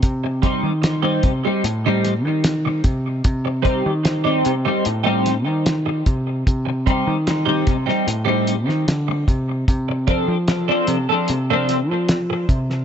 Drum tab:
HH |x-x-x-x-x-x-x-x-|x-x-x-x-x-x-x-x-|x-x-x-x-x-x-x-x-|x-x-x-x-x-x-x-x-|
SD |----o-----o-o---|----o-----o-o---|----o--o---oo---|----o-----o-o--o|
BD |o-o---o-------o-|o-o-----------o-|o-o---o-------o-|o-o-----------o-|